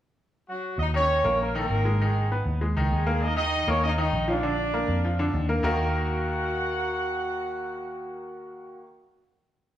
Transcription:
0.48 horn section F#3 F#4
0.78 fingered electric bass D#2, horn section D#4 D#5
0.94 upright piano D#3 D#4, horn section C#4 C#5
1.24 fingered electric bass A#1, upright piano A#3 A#4
1.42 horn section A#3 A#4
1.55 upright piano D#3 D#4, horn section A#3 A#4
1.70 fingered electric bass G#1
1.85 upright piano G#3 G#4
2.01 upright piano D#3 D#4, horn section G#3 G#4
2.32 upright piano B3 B4
2.46 fingered electric bass D#2
2.61 upright piano G#3 G#4
2.76 fingered electric bass C#2, upright piano D#3 D#4
2.91 fingered electric bass D#2, horn section G#3 G#4
3.06 upright piano A#3 A#4
3.23 horn section D#4 D#5
3.36 upright piano D#3 D#4, horn section D#4 D#5
3.67 fingered electric bass D#2, upright piano A#3 A#4, horn section C#4 C#5
3.84 horn section D#4 D#5
3.98 upright piano D#3 D#4, horn section D#4 D#5
4.13 fingered electric bass A#1
4.27 upright piano F3 F4, horn section D4 D5
4.43 upright piano D3 D4
4.74 upright piano A#3 A#4
4.88 fingered electric bass F2
5.04 upright piano F3 F4
5.19 upright piano D3 D4
5.34 fingered electric bass D#2
5.49 upright piano A#3 A#4
5.63 fingered electric bass D#2, upright piano D#3 A#3 D#4 F#4 A#4, horn section F#4 F#5

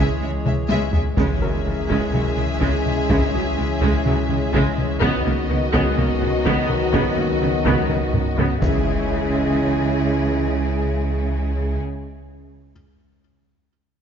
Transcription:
Already playing: sub bass C#2, trombone section C#3 G#3, analog synth pad E3 G#3 G#4 C#5, viola section G#3, french horn section C#4 E4, violin section G#4, felt piano G#4
0.00 violin section E5
0.20 double bass section C#2, cello section C#3, viola section G#3, violin section G#4 E5
0.45 double bass section C#2, cello section C#3, viola section G#3, violin section G#4 E5, taiko mid
0.69 double bass section C#2, cello section C#3, viola section G#3, violin section G#4 E5, taiko high
0.93 double bass section C#2, cello section C#3, viola section G#3, violin section G#4 E5, taiko low
1.17 sub bass C#2, double bass section C#2, cello section C#3, trombone section C#3 G#3, analog synth pad E3 G#3 G#4 C#5, viola section G#3, french horn section C#4 E4, violin section G#4 E5, taiko, impact
1.41 double bass section C#2, cello section C#3, viola section F#3, felt piano A#4
1.66 double bass section C#2, cello section C#3, viola section G#3
1.89 double bass section C#2, cello section C#3, viola section G#3, taiko
2.13 double bass section C#2, cello section C#3, viola section F#3, taiko mid
2.37 double bass section C#2, cello section C#3, viola section G#3, taiko mid
2.61 double bass section C#2, cello section C#3, viola section G#3, taiko
2.86 taiko mid
3.09 double bass section C#2, cello section C#3, viola section G#3, taiko
3.34 double bass section C#2, cello section C#3, viola section F#3, felt piano C#5
3.58 double bass section C#2, cello section C#3, viola section G#3
3.82 double bass section C#2, cello section C#3, viola section G#3, taiko
4.06 double bass section C#2, cello section C#3, viola section F#3, taiko mid
4.30 double bass section C#2, cello section C#3, viola section G#3, taiko mid
4.54 double bass section C#2, cello section C#3, viola section G#3, taiko
4.78 taiko mid
5.01 double bass section C#2, sub bass C#2, cello section C#3, analog synth pad D#3 B3 F#4 D#5, trombone section D#3 F#3, french horn section B3 F#4, viola section B3, violin section F#4 D#5, felt piano B4, taiko
5.25 double bass section C#2, cello section C#3, viola section A#3
5.50 double bass section C#2, cello section C#3, viola section B3
5.74 double bass section C#2, cello section C#3, felt piano G#3 G#4, viola section B3, taiko
5.97 double bass section C#2, cello section C#3, viola section A#3, taiko mid
6.22 double bass section C#2, cello section C#3, viola section B3, taiko mid
6.46 double bass section C#2, cello section C#3, viola section B3, taiko
6.69 felt piano A#4, taiko mid
6.94 double bass section C#2, cello section C#3, viola section B3, taiko
7.18 double bass section C#2, cello section C#3, viola section A#3
7.41 double bass section C#2, cello section C#3, viola section B3
7.65 double bass section C#2, cello section C#3, viola section B3, taiko
7.89 double bass section C#2, cello section C#3, viola section A#3, taiko mid
8.14 double bass section C#2, cello section C#3, viola section B3, taiko low-mid
8.38 double bass section C#2, cello section C#3, viola section B3, taiko low-mid
8.60 double bass section C#2, sub bass C#2, cello section C#3, trombone section C#3 G#3, analog synth pad E3 G#3 G#4 C#5, viola section G#3, french horn section C#4 E4, violin section G#4 E5, taiko, impact

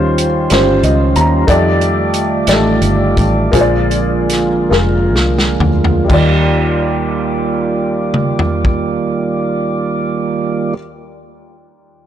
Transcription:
Already playing: fingered electric bass D#2, upright piano D#3 G3 C#4 F4 C5, tonewheel organ D#3 G3 C#4 F4 C5
0.18 closed hi-hat
0.50 fingered electric bass G1, upright piano G3 C#4 F4 C5, snare, closed hi-hat
0.83 fingered electric bass C#2, upright piano D#5, closed hi-hat
1.16 fingered electric bass D#2, upright piano A#5, closed hi-hat
1.47 fingered electric bass F2, tonewheel organ D#3 A3 F4 D5, upright piano A3 D#4 G4 D5, kick, closed hi-hat
1.81 closed hi-hat
2.14 closed hi-hat
2.47 fingered electric bass A1, upright piano G3 D#4 G4 D5, snare, closed hi-hat
2.53 upright piano A3
2.81 fingered electric bass G1, closed hi-hat
3.17 fingered electric bass A1, kick, closed hi-hat
3.52 fingered electric bass A#1, upright piano A#2 A#3 F4 G#4 C5, tonewheel organ D3 F3 G#3 A#3, kick, closed hi-hat
3.61 upright piano D5
3.91 closed hi-hat
4.29 snare, closed hi-hat
4.70 fingered electric bass F1, upright piano A#3 F4 G#4 A#4, snare
5.14 fingered electric bass C2, snare
5.39 snare
5.60 fingered electric bass D2, floor tom
5.84 floor tom
6.04 upright piano G3 D#4
6.09 upright piano D#2 F4, fingered electric bass D#2, tonewheel organ D#3 G3 A#3 F4 D5, kick, crash
6.14 upright piano D5
8.14 mid tom
8.39 floor tom
8.65 kick

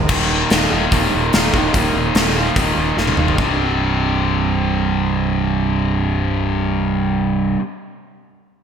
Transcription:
0.08 fingered electric bass D#1, distorted electric guitar D#2 A#2 D#3, kick, crash
0.50 fingered electric bass D#1, distorted electric guitar D#2 A#2 D#3, snare, open hi-hat
0.71 fingered electric bass D#1, distorted electric guitar D#2 A#2 D#3
0.92 fingered electric bass D#1, distorted electric guitar D#2 A#2 D#3, kick, open hi-hat
1.15 fingered electric bass D#1
1.33 fingered electric bass D#1, distorted electric guitar D#2 A#2 D#3, snare, open hi-hat
1.53 fingered electric bass D#1, distorted electric guitar D#2 A#2 D#3, kick
1.73 fingered electric bass D#1, distorted electric guitar D#2 A#2 D#3, kick, open hi-hat
1.94 fingered electric bass D#1
2.14 fingered electric bass D#1, distorted electric guitar D#2 A#2 D#3, snare, open hi-hat
2.35 distorted electric guitar D#2 A#2 D#3
2.56 fingered electric bass D#1, distorted electric guitar D#2 A#2 D#3, kick, open hi-hat
2.76 fingered electric bass D#1
2.97 fingered electric bass D#1, distorted electric guitar D#2 A#2 D#3, snare
3.07 high tom
3.17 fingered electric bass D#1, distorted electric guitar D#2 A#2 D#3, mid tom
3.28 floor tom
3.36 fingered electric bass C1, distorted electric guitar C2 G2, kick
3.41 distorted electric guitar C3

